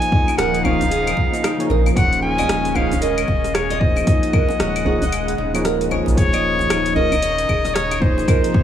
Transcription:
Already playing: analog synth pad C#3 F3 D#4, tine electric piano F3 A#3 D#4 G#4 D#5, clarinet G#5
0.02 closed hi-hat, shaker
0.12 nylon-string guitar D#4, kick
0.28 djembe slap, djembe tone, claves, shaker
0.37 sub bass D#1, nylon-string guitar A#4, clarinet F#5, cross-stick, closed hi-hat, shaker
0.54 closed hi-hat, shaker
0.64 tine electric piano F3 A#3 D#4 G#4 C#5, nylon-string guitar C#5, clarinet F5, djembe bass, claves
0.80 closed hi-hat, djembe tone, djembe bass, shaker
0.91 nylon-string guitar G#4, closed hi-hat, shaker
1.07 nylon-string guitar D#5, closed hi-hat, claves, shaker
1.17 kick, djembe slap
1.32 tine electric piano F3 A#3 D#4 G#4 D#5, closed hi-hat, shaker
1.44 nylon-string guitar D#4, cross-stick, closed hi-hat, claves, shaker
1.58 tine electric piano F3 A#3 D#4 G#4 C#5, closed hi-hat, shaker
1.70 sub bass A#1, nylon-string guitar A#4, djembe slap, djembe tone
1.86 djembe slap, claves, shaker
1.94 sub bass D#1, tine electric piano F3 A#3 D#4 G#4, analog synth pad G#3 C#4, nylon-string guitar C#5, clarinet F#5, kick, closed hi-hat, claves, shaker
1.98 tine electric piano C6
2.13 closed hi-hat, shaker
2.22 nylon-string guitar G#4, clarinet G#5
2.38 nylon-string guitar D#5, djembe slap, djembe tone, claves, shaker
2.49 sub bass D#1, cross-stick, closed hi-hat, shaker
2.65 closed hi-hat, djembe slap, shaker
2.74 tine electric piano F3 A#3 D#4 G#4 C5, nylon-string guitar D#4, clarinet F5, djembe bass, claves
2.92 closed hi-hat, djembe tone, djembe bass, shaker
3.01 nylon-string guitar A#4, clarinet D#5, closed hi-hat, shaker
3.18 closed hi-hat, claves, shaker
3.28 sub bass D#1, nylon-string guitar C#5, kick, djembe slap, djembe tone
3.44 cross-stick, closed hi-hat, shaker
3.54 nylon-string guitar G#4, clarinet C#5, cross-stick, closed hi-hat, claves, shaker
3.70 nylon-string guitar D#5, closed hi-hat, djembe slap, shaker
3.80 tine electric piano F3 A#3 D#4 G#4 C5, clarinet D#5, kick
3.96 djembe slap, djembe tone, claves, shaker
4.04 analog synth pad C#3 G#3 F#5, tine electric piano F3 A#3 D#4 G#4, nylon-string guitar D#4, kick, closed hi-hat, shaker
4.09 tine electric piano D#5
4.23 closed hi-hat, shaker
4.33 nylon-string guitar A#4, kick, claves
4.49 djembe slap, djembe tone, shaker
4.60 sub bass D#1, nylon-string guitar C#5, cross-stick, closed hi-hat, shaker
4.76 closed hi-hat, claves, shaker
4.85 tine electric piano F3 A#3 D#4 G#4 C#5, nylon-string guitar G#4, djembe bass
5.01 nylon-string guitar D#5, closed hi-hat, djembe tone, djembe bass, shaker
5.12 closed hi-hat, claves, shaker
5.28 closed hi-hat, shaker
5.38 sub bass D#1, nylon-string guitar D#4, djembe slap
5.53 tine electric piano F3 A#3 D#4 G#4 C#5, closed hi-hat, claves, shaker
5.65 nylon-string guitar A#4, cross-stick, closed hi-hat, shaker
5.81 closed hi-hat, shaker
5.90 tine electric piano F3 A#3 D#4 G#4 C#5, nylon-string guitar C#5, djembe slap, djembe tone, claves
6.06 sub bass A#1, djembe slap, shaker
6.15 sub bass D#1, tine electric piano F3 A#3 D#4 G#4, analog synth pad D#4, nylon-string guitar G#4, clarinet C#5, kick, closed hi-hat, shaker
6.19 tine electric piano C#5
6.33 nylon-string guitar D#5, closed hi-hat, claves, shaker
6.59 djembe slap, djembe tone, shaker
6.70 sub bass D#1, nylon-string guitar D#4, cross-stick, closed hi-hat, claves, shaker
6.85 closed hi-hat, djembe slap, shaker
6.95 tine electric piano F3 A#3 D#4 G#4 C#5, nylon-string guitar A#4, clarinet D#5, djembe bass
7.12 closed hi-hat, djembe tone, djembe bass, claves, shaker
7.22 nylon-string guitar C#5, closed hi-hat, shaker
7.38 closed hi-hat, shaker
7.49 sub bass D#1, nylon-string guitar G#4, kick, djembe slap, djembe tone, claves
7.64 nylon-string guitar D#5, cross-stick, closed hi-hat, shaker
7.74 clarinet C#5, cross-stick, closed hi-hat, shaker
7.91 closed hi-hat, djembe slap, claves, shaker
8.00 tine electric piano F3 A#3 D#4 G#4 C#5, nylon-string guitar D#4, clarinet C5, kick
8.18 djembe slap, djembe tone, shaker
8.26 analog synth pad C3 F3, tine electric piano F3 A#3 D#4 G#4, nylon-string guitar A#4, kick, closed hi-hat, claves, shaker
8.30 tine electric piano D#5
8.44 closed hi-hat, shaker
8.54 nylon-string guitar C#5, kick

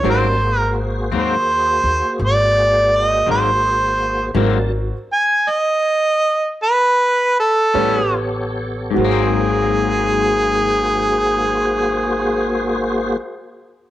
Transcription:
0.04 upright bass G#1, clean electric guitar G#2 F#3 A#3 C4, tonewheel organ G3 A#3 C#4 A5, grand piano F#4 A#4 C5
0.10 harmonica C5
0.40 tonewheel organ A#3 F#4 G#4 C5
0.58 harmonica A#4
1.12 upright bass D#2, clean electric guitar G#2 F#3 A#3 C4
1.17 harmonica C5
1.84 upright bass D#2
2.19 upright bass G#1
2.25 harmonica D5
2.96 harmonica D#5
3.26 upright bass G#1, clean electric guitar G#2 F#3 A#3 C4
3.31 harmonica C5
4.34 upright bass G#1, clean electric guitar G#2 F#3 A#3 C4, tonewheel organ G3 A#3 C#4 A5, grand piano F#4 A#4 C5
5.13 harmonica G#5
5.50 harmonica D#5
6.63 harmonica B4
7.40 harmonica A4
7.74 upright bass A1, clean electric guitar A2 G3 B3 C#4, tonewheel organ B3 G4 A4 C#5, grand piano G4 B4 C#5
8.91 clean electric guitar G#2, grand piano F#4
8.96 upright bass G#1, clean electric guitar F#3, grand piano A#4 C5
9.01 tonewheel organ A#3 F#4 G#4 C5, clean electric guitar A#3, harmonica G#4
9.11 clean electric guitar C4

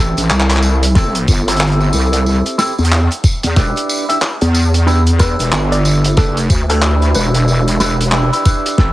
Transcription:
Already playing: wobble bass A1, clean electric guitar E4 A4
0.00 clean electric guitar C4 G4
0.17 wobble bass A1, closed hi-hat, tambourine
0.23 tambourine
0.30 wobble bass C2, clap, tambourine
0.40 clap, tambourine
0.50 clap, closed hi-hat, tambourine
0.57 clap
0.62 tambourine
0.83 closed hi-hat, tambourine
0.95 clean electric guitar C4 E4 G4 A4, kick, snare, tambourine
1.15 closed hi-hat
1.27 wobble bass G1, kick, tambourine
1.48 clean electric guitar C4 E4 G4 A4, closed hi-hat, tambourine
1.49 closed hi-hat, tambourine
1.56 closed hi-hat, tambourine
1.60 clap, tambourine
1.67 closed hi-hat, tambourine
1.72 closed hi-hat
1.80 tambourine
1.93 wobble bass C2, tambourine
2.13 closed hi-hat, tambourine
2.26 tambourine
2.46 closed hi-hat, tambourine
2.58 clean electric guitar C4 E4 G4 A4, snare, tambourine
2.78 wobble bass E2, tambourine
2.85 closed hi-hat
2.91 clap, tambourine
3.11 closed hi-hat, tambourine
3.24 kick, tambourine
3.43 wobble bass E2, closed hi-hat, tambourine
3.56 wobble bass E1, clean electric guitar D4 E4 G4 B4, kick, snare, tambourine
3.76 closed hi-hat, tambourine
3.89 tambourine
4.09 clean electric guitar D4 E4 G4 E5, closed hi-hat, tambourine
4.22 clap, tambourine
4.41 wobble bass E2, closed hi-hat, tambourine
4.55 tambourine
4.74 closed hi-hat, tambourine
4.86 clean electric guitar D4 E4 G4 B4, tambourine
5.06 closed hi-hat, tambourine
5.19 clean electric guitar D4 E4 G4 B4, synth pluck B4, kick, snare, tambourine
5.39 wobble bass E1, closed hi-hat, tambourine
5.52 wobble bass G1, clap, tambourine
5.72 synth pluck D5, closed hi-hat, tambourine
5.85 tambourine
6.04 closed hi-hat, tambourine
6.17 wobble bass F#1, clean electric guitar D4 E4 G4 B4, synth pluck A4, kick, snare, tambourine
6.37 closed hi-hat, tambourine
6.50 wobble bass D2, kick, tambourine
6.70 clean electric guitar D4 E4 G4 B4, synth pluck A4, closed hi-hat, tambourine
6.82 clap, tambourine
7.02 closed hi-hat, tambourine
7.14 wobble bass E1, synth pluck B4, tambourine
7.34 closed hi-hat, tambourine
7.36 tambourine
7.38 tambourine
7.40 tambourine
7.42 tambourine
7.44 tambourine
7.46 tambourine
7.48 tambourine
7.67 closed hi-hat, tambourine
7.80 wobble bass E1, clean electric guitar D4 E4 G4 B4, snare, tambourine
8.01 closed hi-hat, tambourine
8.12 clean electric guitar D4 E4 G4 B4, clap, tambourine
8.32 clean electric guitar D4 E4 G4 B4, closed hi-hat, tambourine
8.45 clean electric guitar D4 E4 G4 B4, kick, tambourine
8.66 closed hi-hat, tambourine
8.78 wobble bass A1, clean electric guitar C4 E4 G4 A4, kick, snare

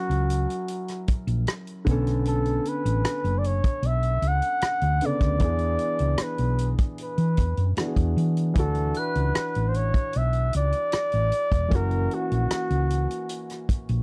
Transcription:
Already playing: grand piano F#3 C#4 E4 A#4, flugelhorn F#4
0.10 fingered electric bass C#2, closed hi-hat
0.30 closed hi-hat
0.50 closed hi-hat
0.68 closed hi-hat
0.88 cross-stick, closed hi-hat
1.08 muted fingered electric bass stroke, kick, closed hi-hat
1.27 fingered electric bass A#1, closed hi-hat
1.47 cross-stick, closed hi-hat
1.67 closed hi-hat
1.85 fingered electric bass B1, grand piano D3 B3, kick, closed hi-hat
1.89 grand piano C#4 A4
2.07 cross-stick, closed hi-hat
2.25 flugelhorn A4, closed hi-hat
2.45 closed hi-hat
2.65 flugelhorn B4, closed hi-hat
2.85 fingered electric bass A1, closed hi-hat
3.05 muted fingered electric bass stroke, cross-stick, closed hi-hat
3.24 fingered electric bass F#1, closed hi-hat
3.38 flugelhorn D5
3.44 flugelhorn C#5, closed hi-hat
3.64 kick, closed hi-hat
3.82 fingered electric bass B1, flugelhorn E5, closed hi-hat
4.03 closed hi-hat
4.22 fingered electric bass C#2, closed hi-hat
4.28 flugelhorn F#5
4.42 closed hi-hat
4.61 muted fingered electric bass stroke, cross-stick, closed hi-hat
4.81 fingered electric bass D2, closed hi-hat
5.01 grand piano C#3 D3 B3 A4, closed hi-hat
5.06 flugelhorn D5
5.21 fingered electric bass D2, kick, cross-stick, closed hi-hat
5.39 fingered electric bass E2, grand piano E3 B3 D4, kick, closed hi-hat
5.44 grand piano G#4
5.59 closed hi-hat
5.79 closed hi-hat
5.99 fingered electric bass C#2, closed hi-hat
6.18 cross-stick, closed hi-hat
6.22 flugelhorn B4
6.38 fingered electric bass B1, closed hi-hat
6.58 closed hi-hat
6.78 kick, closed hi-hat
6.98 closed hi-hat
7.03 flugelhorn B4
7.18 fingered electric bass E3, closed hi-hat
7.37 fingered electric bass E2, kick, closed hi-hat
7.57 fingered electric bass F#2, closed hi-hat
7.77 grand piano E3 B3 D4 F#4, cross-stick, closed hi-hat
7.87 grand piano G#4
7.96 fingered electric bass E2, kick, closed hi-hat
8.17 fingered electric bass E3, closed hi-hat
8.37 closed hi-hat
8.54 fingered electric bass D2, grand piano E3 D4 E4, kick, closed hi-hat
8.58 grand piano F#4, flugelhorn A4
8.75 closed hi-hat
8.94 glockenspiel F#6, closed hi-hat
8.99 flugelhorn B4
9.15 fingered electric bass C#2, closed hi-hat
9.35 muted fingered electric bass stroke, cross-stick, closed hi-hat
9.55 fingered electric bass A1, closed hi-hat
9.68 flugelhorn C5
9.74 flugelhorn C#5, closed hi-hat
9.94 kick, closed hi-hat
10.13 fingered electric bass B1, closed hi-hat
10.17 flugelhorn E5
10.33 closed hi-hat
10.53 fingered electric bass C#2, closed hi-hat
10.57 flugelhorn D5
10.72 closed hi-hat
10.92 muted fingered electric bass stroke, cross-stick, closed hi-hat
11.12 fingered electric bass A1, closed hi-hat
11.32 closed hi-hat
11.52 fingered electric bass E1, kick, closed hi-hat
11.68 fingered electric bass F#1, grand piano E3 A#3 C#4, kick, closed hi-hat
11.75 grand piano F#4, flugelhorn A#4
11.91 closed hi-hat
12.11 flugelhorn F#4, closed hi-hat
12.31 fingered electric bass A#1, closed hi-hat
12.51 muted fingered electric bass stroke, cross-stick, closed hi-hat
12.70 fingered electric bass C#2, closed hi-hat
12.90 closed hi-hat
13.11 closed hi-hat
13.29 closed hi-hat
13.50 cross-stick, closed hi-hat
13.69 muted fingered electric bass stroke, kick, closed hi-hat
13.89 fingered electric bass A#1, closed hi-hat

